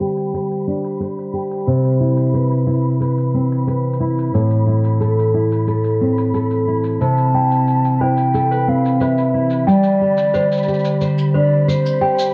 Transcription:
0.00 1.67 D3 medium
0.00 2.51 G3 medium
0.00 0.67 C4 soft
0.00 7.00 C4 medium
0.00 7.01 G4 medium
0.00 1.33 G4 soft
0.00 0.33 C5 medium
0.00 1.67 C5 medium
0.00 12.34 B5 medium
0.17 shaker medium
0.34 1.00 C5 medium
0.34 shaker medium
0.51 shaker soft
0.67 1.74 D4 soft
0.84 shaker medium
1.00 2.33 C5 medium
1.00 shaker medium
1.18 shaker soft
1.33 2.00 G4 soft
1.51 shaker medium
1.67 4.34 C3 medium
1.67 9.67 E3 medium
1.67 shaker medium
1.85 shaker soft
2.00 2.66 E4 medium
2.10 5.40 B4 medium
2.17 shaker medium
2.34 2.99 B4 medium
2.34 shaker medium
2.51 shaker soft
2.67 4.00 E4 medium
3.00 3.66 B4 medium
3.00 shaker medium
3.18 shaker soft
3.34 6.01 C4 medium
3.52 shaker medium
3.67 4.41 B4 medium
3.67 shaker medium
3.93 shaker soft
4.00 4.67 E4 medium
4.18 shaker medium
4.34 7.00 A2 medium
4.34 shaker medium
4.50 shaker soft
4.63 8.07 A4 medium
4.67 5.34 E4 medium
4.84 shaker medium
5.00 5.66 A4 medium
5.00 shaker medium
5.19 shaker soft
5.34 6.67 E4 medium
5.52 shaker medium
5.67 6.33 A4 medium
5.67 shaker medium
5.84 shaker soft
6.01 8.54 C4 soft
6.18 shaker medium
6.34 7.07 A4 medium
6.34 shaker medium
6.51 shaker soft
6.67 7.34 E4 soft
6.84 shaker medium
7.01 9.68 C3 medium
7.01 8.03 A5 loud
7.01 shaker medium
7.18 shaker soft
7.30 12.34 C4 medium
7.34 7.99 E4 medium
7.34 7.66 G5 medium
7.52 shaker medium
7.56 12.34 G4 medium
7.68 shaker medium
7.85 shaker soft
8.01 9.33 E4 medium
8.01 8.33 C5 medium
8.01 8.70 G5 medium
8.17 shaker medium
8.34 8.51 A4 medium
8.34 shaker medium
8.51 9.00 B4 soft
8.51 shaker soft
8.68 11.35 C4 soft
8.68 8.95 F5 medium
8.86 shaker medium
8.95 9.04 F5 medium
9.01 9.74 B4 medium
9.01 9.20 C5 medium
9.01 9.68 E5 medium
9.01 shaker medium
9.18 shaker soft
9.34 9.74 E4 medium
9.50 shaker medium
9.67 12.34 D3 medium
9.67 12.34 G3 medium
9.67 11.04 D5 loud
9.67 9.99 G5 medium
9.67 shaker medium
9.83 shaker soft
9.97 10.67 G4 medium
9.97 12.34 C5 medium
10.18 shaker medium
10.34 10.66 C5 medium
10.34 11.01 C5 medium
10.34 shaker medium
10.52 shaker soft
10.57 shaker soft
10.63 shaker soft
10.68 12.01 G4 medium
10.68 shaker soft
10.74 shaker soft
10.79 shaker soft
10.85 shaker medium
11.01 11.68 C5 medium
11.01 shaker medium
11.18 shaker soft
11.34 12.34 D4 medium
11.34 11.53 C5 medium
11.34 11.69 D5 medium
11.68 12.34 C5 medium
11.68 shaker medium
11.86 shaker soft
12.01 12.34 G4 medium
12.01 12.33 G5 medium
12.19 shaker medium

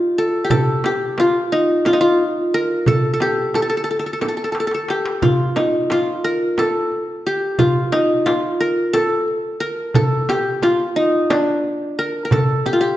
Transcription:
0.00 0.62 D#4 medium
0.00 0.86 F4 medium
0.00 0.44 G4 medium
0.18 0.50 A4 medium
0.44 0.85 G4 medium
0.50 1.68 A4 medium
0.50 darbuka dum medium
0.50 frame drum medium
0.84 2.11 G4 medium
0.84 darbuka tek medium
0.84 frame drum medium
1.18 1.86 F4 medium
1.18 darbuka tek medium
1.18 frame drum medium
1.35 darbuka ka soft
1.52 1.93 D#4 medium
1.85 2.00 F4 medium
1.85 darbuka tek medium
1.85 frame drum medium
1.93 3.38 D#4 medium
2.01 3.36 F4 medium
2.19 darbuka ka soft
2.54 2.94 A#4 medium
2.86 3.13 A4 medium
2.86 darbuka dum medium
2.86 frame drum medium
3.14 3.55 A4 medium
3.20 4.47 G4 medium
3.20 darbuka tek medium
3.20 frame drum medium
3.54 3.62 A4 medium
3.54 darbuka tek medium
3.54 frame drum medium
3.62 3.69 A4 medium
3.70 3.77 A4 medium
3.70 darbuka ka soft
3.77 3.83 A4 medium
3.84 3.90 A4 medium
3.91 3.99 A4 soft
3.99 4.06 A4 medium
4.06 4.13 A4 soft
4.13 4.21 A4 soft
4.21 4.28 A4 soft
4.21 darbuka tek medium
4.21 frame drum medium
4.28 4.37 A4 medium
4.37 4.44 A4 soft
4.44 4.52 A4 medium
4.52 4.60 A4 soft
4.52 darbuka tek medium
4.60 4.67 A4 medium
4.67 4.74 A4 medium
4.71 5.91 A4 medium
4.71 darbuka ka medium
4.88 6.16 G4 medium
4.88 darbuka tek medium
5.06 darbuka ka medium
5.22 5.91 F4 medium
5.22 darbuka dum medium
5.22 frame drum medium
5.56 7.01 D#4 medium
5.56 darbuka tek medium
5.56 frame drum medium
5.90 7.26 F4 medium
5.90 darbuka tek medium
5.90 frame drum medium
6.07 darbuka ka soft
6.24 6.65 A#4 medium
6.58 7.76 A4 medium
6.58 darbuka tek medium
6.58 frame drum medium
6.92 darbuka ka soft
7.27 8.52 G4 medium
7.59 8.25 F4 medium
7.59 darbuka dum medium
7.59 frame drum medium
7.92 9.37 D#4 medium
7.92 darbuka tek medium
7.92 frame drum medium
8.26 9.61 F4 medium
8.26 darbuka tek medium
8.26 frame drum medium
8.43 darbuka ka soft
8.60 8.99 A#4 medium
8.93 9.66 A4 medium
8.93 darbuka tek medium
8.93 frame drum medium
9.28 darbuka ka soft
9.60 10.01 A#4 medium
9.94 11.12 A4 medium
9.94 darbuka dum medium
9.94 frame drum medium
10.29 11.55 G4 medium
10.29 darbuka tek medium
10.29 frame drum medium
10.62 11.98 F4 medium
10.62 darbuka tek medium
10.62 frame drum medium
10.80 darbuka ka soft
10.96 11.36 D#4 medium
11.30 12.80 D4 medium
11.30 darbuka tek medium
11.30 frame drum medium
11.64 darbuka ka soft
11.99 12.24 A#4 medium
12.25 12.38 A#4 medium
12.31 12.97 A4 medium
12.31 frame drum medium
12.31 darbuka dum medium
12.66 12.80 G4 medium
12.66 frame drum medium
12.73 12.97 F4 medium
12.81 12.97 G4 medium

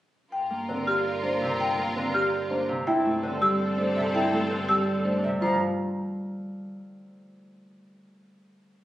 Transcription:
0.32 2.76 G2 medium
0.32 2.65 F4 medium
0.32 2.65 A#4 medium
0.32 0.56 G5 medium
0.51 1.22 A#3 medium
0.69 1.95 D3 medium
0.69 0.93 C4 medium
0.87 1.11 G4 medium
0.87 0.94 F6 medium
1.23 1.77 A#3 medium
1.23 1.47 D4 medium
1.23 1.47 C5 medium
1.42 2.68 C3 medium
1.60 1.84 G5 medium
1.78 2.50 A#3 medium
1.96 2.89 D3 medium
1.96 2.20 C4 medium
2.14 2.38 G4 medium
2.14 2.21 F6 medium
2.50 2.89 A#3 medium
2.50 2.74 D4 medium
2.50 2.74 C5 medium
2.69 2.89 C3 medium
2.87 5.30 G2 medium
2.87 4.13 C4 medium
2.87 5.20 C4 medium
2.87 3.11 E4 medium
2.87 5.20 A4 medium
2.87 3.11 G5 medium
3.05 3.76 A3 medium
3.23 4.50 D3 medium
3.23 3.47 C4 medium
3.41 4.68 G3 medium
3.41 3.65 G4 medium
3.41 3.48 E6 medium
3.78 4.31 A3 medium
3.78 4.02 D4 medium
3.78 4.02 C5 medium
3.96 5.22 C3 loud
3.96 4.03 E5 medium
4.14 5.43 C4 medium
4.14 4.38 E4 medium
4.14 4.38 G5 medium
4.33 5.04 A3 medium
4.50 5.43 D3 medium
4.50 4.74 C4 medium
4.69 6.70 G3 medium
4.69 4.92 G4 medium
4.69 4.76 E6 medium
5.05 5.43 A3 medium
5.05 5.29 D4 medium
5.05 5.29 C5 medium
5.24 5.43 C3 loud
5.24 5.30 E5 medium
5.41 5.59 G2 medium
5.41 5.59 F3 medium
5.41 5.58 F4 medium
5.41 5.59 C5 medium
5.41 5.58 A#5 medium

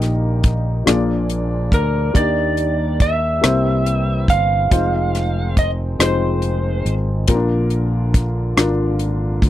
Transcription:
0.00 0.83 A#1 medium
0.00 0.84 A#2 medium
0.00 0.86 D#3 medium
0.00 0.87 G3 medium
0.00 4.69 A#3 medium
0.00 0.52 D#4 medium
0.00 0.86 D#4 medium
0.00 0.53 G4 medium
0.00 0.53 A#4 medium
0.00 cross-stick soft
0.00 closed hi-hat soft
0.44 kick medium
0.44 closed hi-hat soft
0.85 1.69 A#1 medium
0.85 2.12 A#2 medium
0.85 2.13 F3 medium
0.85 2.14 G#3 medium
0.85 1.80 A#3 medium
0.85 1.80 D4 medium
0.85 1.80 F4 medium
0.85 1.81 G#4 medium
0.85 3.41 D5 medium
0.85 1.81 D5 medium
0.85 cross-stick medium
0.85 closed hi-hat medium
1.30 closed hi-hat soft
1.72 2.12 D2 medium
1.72 2.18 A#4 medium
1.72 kick medium
1.72 closed hi-hat soft
2.14 3.40 D#2 medium
2.14 3.40 D#3 soft
2.14 3.42 D#3 medium
2.14 4.69 G3 medium
2.14 3.08 A#3 medium
2.14 3.09 D4 medium
2.14 3.09 D#4 medium
2.14 3.09 G4 medium
2.14 3.09 D5 medium
2.14 3.04 D5 medium
2.14 kick medium
2.14 closed hi-hat medium
2.57 closed hi-hat soft
3.00 4.30 E5 medium
3.00 kick medium
3.00 closed hi-hat soft
3.41 4.26 C2 medium
3.41 4.68 C3 soft
3.41 4.71 E3 medium
3.41 4.36 A#3 medium
3.41 4.37 C4 soft
3.41 7.26 C4 medium
3.41 4.37 E4 soft
3.41 4.37 G4 soft
3.41 4.37 C5 medium
3.41 cross-stick medium
3.41 closed hi-hat medium
3.86 closed hi-hat soft
4.28 4.68 G1 medium
4.28 5.58 F5 medium
4.28 kick medium
4.28 closed hi-hat soft
4.70 5.96 F1 medium
4.70 7.27 D#3 medium
4.70 7.26 F3 medium
4.70 5.65 G#3 medium
4.70 7.26 G#3 medium
4.70 5.65 C4 medium
4.70 5.65 D#4 medium
4.70 5.65 F4 medium
4.70 5.65 C5 medium
4.70 kick medium
4.70 closed hi-hat medium
5.15 cross-stick soft
5.15 closed hi-hat soft
5.57 5.70 D#5 medium
5.57 kick medium
5.57 closed hi-hat soft
5.99 6.82 F1 medium
5.99 6.93 G#3 medium
5.99 6.94 C4 soft
5.99 6.94 D#4 soft
5.99 6.94 F4 medium
5.99 6.94 C5 medium
5.99 6.93 C5 medium
5.99 cross-stick medium
5.99 closed hi-hat medium
6.42 closed hi-hat soft
6.85 7.25 G#1 medium
6.85 closed hi-hat soft
7.27 8.53 A#1 medium
7.27 8.53 A#2 medium
7.27 9.50 D3 medium
7.27 9.50 F3 medium
7.27 9.50 A#3 medium
7.27 7.35 C4 medium
7.27 8.22 F4 medium
7.27 9.50 F4 medium
7.27 8.22 A#4 medium
7.27 kick medium
7.27 closed hi-hat medium
7.34 8.25 D4 medium
7.70 closed hi-hat soft
8.14 kick medium
8.14 closed hi-hat soft
8.57 9.39 G#1 medium
8.57 9.50 D4 medium
8.57 9.50 F4 medium
8.57 9.50 A#4 medium
8.57 cross-stick medium
8.57 closed hi-hat medium
8.99 closed hi-hat soft
9.42 9.50 D2 medium
9.42 kick medium
9.42 closed hi-hat soft

